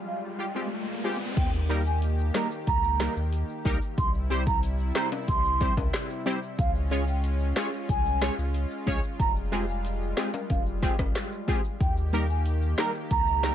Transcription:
Already playing: analog synth pad G3 G#3 F4, riser
0.06 flute F5
0.39 synth stab F4 G4, flute G5
0.55 synth stab G#3 C4 F4 G4
1.04 synth stab G#3 C4 F4 G4, flute G#5
1.37 sub bass D#2, analog synth pad D#3 A#3 G4, flute G5, kick, closed hi-hat, crash, shaker
1.53 shaker
1.69 synth stab G3 A#3 D#4 G4 A#4, closed hi-hat, shaker
1.86 flute G#5, shaker
2.02 closed hi-hat, shaker
2.18 shaker
2.34 synth stab G3 A#3 D#4 G4 A#4, flute A#5, snare, clap, closed hi-hat
2.51 shaker
2.67 sub bass C#2, flute A#5, kick, closed hi-hat, shaker
2.84 shaker
2.99 synth stab G3 A#3 D#4 G4 A#4, snare, clap, closed hi-hat, shaker
3.16 sub bass D#2, shaker
3.32 closed hi-hat, shaker
3.49 shaker
3.65 sub bass C#2, synth stab G3 A#3 D#4 G4 A#4, kick, closed hi-hat
3.82 shaker
3.98 sub bass C2, analog synth pad C3 G3 E4, flute C6, kick, closed hi-hat, shaker
4.14 shaker
4.30 synth stab G3 C4 E4 G4 C5, closed hi-hat, shaker
4.47 flute A#5, kick, shaker
4.63 closed hi-hat, shaker
4.79 shaker
4.95 synth stab G3 C4 E4 G4 C5, flute A#5, snare, clap, closed hi-hat
5.12 high timbale, shaker
5.28 sub bass C2, flute C6, kick, closed hi-hat, shaker
5.45 shaker
5.60 synth stab G3 C4 E4 G4 C5, kick, closed hi-hat, shaker
5.77 sub bass C#2, kick, high timbale, shaker
5.93 snare, clap, closed hi-hat, shaker
6.10 shaker
6.26 synth stab G3 C4 E4 G4 C5, closed hi-hat
6.43 shaker
6.59 sub bass C#2, analog synth pad G#3 C#4 F4, flute F5, kick, closed hi-hat, shaker
6.75 shaker
6.91 synth stab G#3 C#4 F4 G#4 C#5, closed hi-hat, shaker
7.08 flute G5, shaker
7.24 closed hi-hat, shaker
7.40 shaker
7.56 synth stab G#3 C#4 F4 G#4 C#5, flute G#5, snare, clap, closed hi-hat
7.73 shaker
7.89 sub bass C2, flute G#5, kick, closed hi-hat, shaker
8.05 shaker
8.21 synth stab G#3 C#4 F4 G#4 C#5, snare, clap, closed hi-hat, shaker
8.38 sub bass C#2, shaker
8.54 closed hi-hat, shaker
8.71 shaker
8.86 sub bass C2, synth stab G#3 C#4 F4 G#4 C#5, kick, closed hi-hat
9.03 shaker
9.20 sub bass F1, analog synth pad G3, flute A#5, kick, closed hi-hat, shaker
9.36 shaker
9.52 synth stab G#3 C4 F4 G4 G#4, closed hi-hat, shaker
9.69 flute G#5, shaker
9.85 closed hi-hat, shaker
10.01 shaker
10.17 synth stab G#3 C4 F4 G4 G#4, flute G#5, snare, clap, closed hi-hat
10.34 high timbale, shaker
10.50 sub bass F1, flute F5, kick, closed hi-hat, high timbale, shaker
10.66 shaker
10.82 synth stab G#3 C4 F4 G4 G#4, flute G5, kick, snare, closed hi-hat, shaker
10.99 sub bass G1, kick, cross-stick, high timbale, shaker
11.15 snare, clap, closed hi-hat, shaker
11.32 shaker
11.47 synth stab G#3 C4 F4 G4 G#4, flute G#5, kick, closed hi-hat
11.64 shaker
11.80 sub bass D#2, analog synth pad D#3 A#3 G4, flute G5, kick, closed hi-hat, shaker
11.97 shaker
12.13 synth stab G3 A#3 D#4 G4 A#4, closed hi-hat, shaker
12.29 flute G#5, shaker
12.46 closed hi-hat, shaker
12.62 shaker
12.78 synth stab G3 A#3 D#4 G4 A#4, flute A#5, snare, clap, closed hi-hat
12.95 shaker
13.11 sub bass C#2, flute A#5, kick, closed hi-hat, shaker
13.27 shaker
13.43 synth stab G3 A#3 D#4 G4 A#4, snare, clap, closed hi-hat, shaker

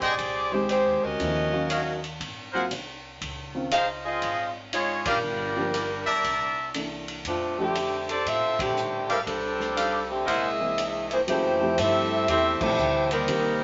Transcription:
Already playing: upright bass G#1
0.01 saxophone section C4 G4 G#4 D5, trumpet section G#4 C5 D#5 G5, kick, ride
0.18 upright bass C2, kick, ride
0.52 upright piano D#3 G#3 C4 G4, saxophone section G#3 D#4 G4 C5
0.69 saxophone section G#3 D#4 G4 C5, hi-hat pedal, ride
0.86 upright bass D#2
1.03 upright bass D2, saxophone section C#4 F#4 A#4 D#5
1.19 upright bass D#2, upright piano D3 F3 C4 E4, kick, ride
1.52 upright piano D#3 F#3 C#4 F5
1.70 trumpet section F#4 C#5 D#5 F5, hi-hat pedal, ride
2.04 ride
2.20 upright bass G#1, kick, ride
2.53 upright piano F#3 A#3 C4 F4, trumpet section G#4 A#4 C5 F#5
2.71 upright bass C2, hi-hat pedal, ride
3.21 upright bass C#2, kick, ride
3.55 upright piano D#3 C4 C#4 F4
3.71 saxophone section D#4 G#4 C5 F5, trumpet section F4 C5 D#5 F5, hi-hat pedal, ride
4.06 saxophone section C4 F4 G#4 D#5
4.22 upright bass G#1, kick, ride
4.73 saxophone section G#3 D#4 F4 C#5, hi-hat pedal, ride
5.05 saxophone section G3 D4 F4 A#4, trumpet section G4 A#4 D5 F5, kick, ride
5.23 upright bass G1
5.56 upright piano F3 A#3 D4 G4
5.74 hi-hat pedal, ride
6.06 upright bass B1, trumpet section A#4 D5 E5 A5, ride
6.24 upright bass C2, kick, ride
6.74 upright piano E3 A#3 D4 A4, hi-hat pedal, ride
7.08 ride
7.25 upright bass F2, saxophone section A3 C4 D4 F4, kick, ride
7.58 saxophone section D3 A3 C4 G4, upright piano F3 A3 D4 G4
7.75 hi-hat pedal, ride
8.09 saxophone section C4 G4 A4 D5, ride
8.26 upright bass A2, saxophone section C4 F4 A4 E5, kick, ride
8.59 saxophone section D3 A3 C4 G4, kick, ride
8.77 hi-hat pedal
9.09 saxophone section G3 C4 E4 A#4, trumpet section G4 A4 D5 F5, ride
9.26 upright bass C2, saxophone section G3 C4 D4 A4, kick, ride
9.60 snare
9.76 trumpet section G4 A4 D5 F5, hi-hat pedal, ride
10.11 saxophone section D3 A3 C4 G4
10.26 upright bass C2, trombone section G#3 A#3 E4, saxophone section A#3 G#4 D#5 E5, trumpet section G#4 A#4 C5 F#5, kick, ride
10.60 upright piano E3 A#3 C4 G#4
10.78 hi-hat pedal, ride
11.11 trombone section E3 G#3 C4, saxophone section A#3 E4 G#4 C5, ride
11.27 upright bass F2, trombone section E3 A3 C4, upright piano F#3 A#3 C#4 F4 G#4, saxophone section A3 E4 G4 C5, kick, ride
11.61 upright piano F3 A3 C4 E4 G4
11.78 upright bass G2, trombone section A3 C4 E4, saxophone section C4 G4 A4 E5, kick, hi-hat pedal, ride
12.28 upright bass E2, trombone section A3 C4 E4, saxophone section C4 G4 A4 E5, kick, ride
12.60 trombone section E3 A3 C4, upright piano F3 A3 C4 E4 A4, saxophone section A3 E4 G4 C5, muted upright bass stroke, kick, crash
12.78 upright bass D2, hi-hat pedal
13.11 trombone section D#3 G3 A#3, saxophone section G3 C4 D#4 A#4, ride
13.28 upright bass C2, upright piano D#3 G3 A#3 C4 G4, kick, ride

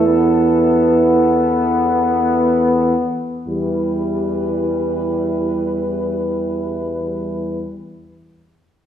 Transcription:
Already playing: tuba E2, euphonium E3, french horn section E4, flugelhorn A4
0.06 trombone section B3
3.46 tuba E2, euphonium E3, trombone section G3, french horn section E4, flugelhorn B4

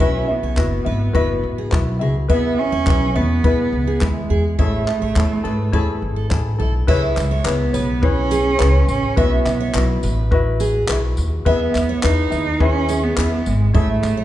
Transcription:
0.00 upright bass B1, cello C#4, ukulele E4 F#4 B4 E5, steel-string acoustic guitar E5, kick
0.28 cello B3, ukulele E4 F#4 E5
0.43 upright bass B1, steel-string acoustic guitar C#5
0.56 upright bass F#1, ukulele E4 F#4 B4 E5, kick, clap
0.85 upright bass G#1, ukulele E4 F#4 E5, steel-string acoustic guitar B4
1.13 upright bass F#1, ukulele E4 F#4 B4 E5, steel-string acoustic guitar B4, kick
1.43 upright bass A1
1.58 steel-string acoustic guitar G#4
1.71 upright bass B1, ukulele E4 F#4 B4 E5, kick, clap
1.99 upright bass C#2, ukulele E4 F#4 E5, steel-string acoustic guitar G#4
2.28 upright bass E2, cello B3, ukulele E4 G#4 B4 E5, steel-string acoustic guitar E5, kick
2.57 cello C#4, ukulele E4 G#4 E5
2.72 upright bass E2, steel-string acoustic guitar C#5
2.86 upright bass B1, ukulele E4 G#4 B4 E5, kick, clap
3.15 upright bass E2, cello B3, ukulele E4 G#4 E5, steel-string acoustic guitar B4
3.44 upright bass B1, ukulele E4 G#4 B4 E5, steel-string acoustic guitar B4, kick
3.72 upright bass C#2
3.87 steel-string acoustic guitar G#4
4.01 upright bass D#2, cello G#3, ukulele E4 G#4 B4 E5, kick, clap
4.30 upright bass E2, steel-string acoustic guitar G#4
4.59 upright bass A1, cello A3, ukulele E4 G#4 A4 C#5, steel-string acoustic guitar E5, kick
4.87 ukulele E4 G#4 A4, clap
5.02 upright bass A1, steel-string acoustic guitar C#5
5.15 upright bass E2, ukulele E4 G#4 A4 C#5, kick, clap
5.44 upright bass G#2, ukulele E4 G#4 A4, steel-string acoustic guitar B4
5.72 upright bass E2, ukulele E4 G#4 A4 C#5, steel-string acoustic guitar B4, kick
6.02 upright bass G#1
6.16 steel-string acoustic guitar A4
6.30 upright bass A1, ukulele E4 G#4 A4 C#5, kick, clap
6.58 upright bass B1, ukulele E4 A4, steel-string acoustic guitar A4
6.87 upright bass C#2, ukulele E4 G#4 B4 C#5, steel-string acoustic guitar E5, kick, crash
7.16 upright bass C#2, cello G#3, ukulele E4 G#4 C#5, clap, tambourine
7.31 steel-string acoustic guitar C#5
7.44 upright bass C#2, cello B3, ukulele E4 G#4 B4 C#5, clap
7.73 upright bass B1, ukulele E4 G#4 C#5, steel-string acoustic guitar B4, tambourine
8.02 cello C#4, ukulele E4 G#4 B4 C#5, kick
8.31 steel-string acoustic guitar G#4, tambourine
8.58 upright bass C#2, ukulele E4 B4 C#5, clap
8.88 upright bass A1, cello C#4, tambourine
9.16 upright bass B1, cello B3, ukulele E4 F#4 B4 E5, steel-string acoustic guitar E5, kick
9.45 upright bass B1, ukulele E4 F#4 E5, clap, tambourine
9.60 steel-string acoustic guitar C#5
9.74 upright bass B1, ukulele E4 F#4 B4 E5, clap
10.03 upright bass A1, steel-string acoustic guitar B4, tambourine
10.31 ukulele E4 F#4 B4 E5, kick
10.60 steel-string acoustic guitar G#4, tambourine
10.88 upright bass B1, ukulele E4 F#4 B4 E5, clap
11.17 upright bass D#2, tambourine
11.45 upright bass E2, cello B3, ukulele E4 G#4 B4 E5, steel-string acoustic guitar E5, kick
11.74 upright bass E2, ukulele E4 G#4 E5, clap, tambourine
11.89 steel-string acoustic guitar C#5
12.02 upright bass E2, cello D#4, ukulele E4 G#4 B4 E5, clap
12.31 upright bass D#2, ukulele E4 G#4 E5, steel-string acoustic guitar B4, tambourine
12.60 cello C#4, ukulele E4 G#4 B4 E5, kick
12.89 steel-string acoustic guitar G#4, tambourine
13.03 cello B3
13.16 upright bass E2, ukulele E4 G#4 B4 E5, clap
13.46 upright bass G#1, cello G#3, tambourine
13.74 upright bass A1, cello A3, ukulele E4 G#4 A4 C#5, steel-string acoustic guitar E5, kick
14.03 upright bass A1, clap, tambourine
14.17 steel-string acoustic guitar C#5

